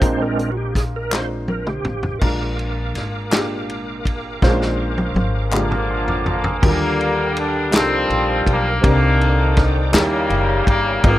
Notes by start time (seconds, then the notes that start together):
Already playing: C5
0.00 A#1 A#2 G#3 C4 D4 F4 A#4, kick, closed hi-hat
0.06 D4
0.22 A#4
0.39 A#4, closed hi-hat
0.52 F#4
0.57 G4
0.75 G#4, kick, snare, closed hi-hat
0.96 A#4
1.09 G#3 C4 F4 C5, snare, clap
1.17 D4
1.48 A#4, high tom
1.67 G4, mid tom
1.85 A1, mid tom
2.03 floor tom
2.19 A#1 A#2 G#3 A#3 D4 F4 A#4 F5 D6, kick, crash
2.23 A#4
2.59 ride bell
2.94 G#1, snare, ride bell
3.30 G#3 A#3 D4 F4 G4, snare, clap, ride bell
3.69 ride bell
4.05 kick, ride bell
4.42 A#1 A#2 G#3 A#3 C#4 F4 C5, kick, snare
4.49 D4
4.62 snare
4.98 high tom
5.14 G#1, high tom
5.51 G#3 A#3 D4 F4 G4, clap, mid tom
5.55 D3 F3 A#3
5.70 F3 D4, mid tom
5.90 G#3 F4
6.08 A#3 G4, floor tom
6.26 G#3 A#3 F4, floor tom
6.44 C4 G#4, floor tom
6.60 D#2 D3 F#3 D4 F4 G4 A#4 F5 G5 D#6, kick, crash
6.66 D3 G3 A#3
7.01 ride bell
7.37 D4, ride bell
7.71 C2 F3 G3 D4 D#4 F4 A4, snare, clap, ride bell
7.76 C4
7.80 A#4
8.10 A#1, ride bell
8.46 B1, kick, ride bell
8.50 A#3
8.81 C2 C3 G3 C4 D4 G4 A#4 C5 D5 A#5 D6, kick, ride bell
8.87 D3 D#3 A#3
9.21 ride bell
9.57 kick, snare, ride bell
9.92 D#2 D#3 G3 C#4 D#4 E4 A#4 C#5 E5 G5 D#6, snare, clap, ride bell
9.96 C#3 G3 A#3
10.30 F#1, ride bell
10.67 G1 A#3, kick, ride bell
11.03 G#1 G#2 D#3 F3 G#3 A#3 B3 D#4 F4 A#4 F5 G#5 C6, kick, ride bell
11.10 C4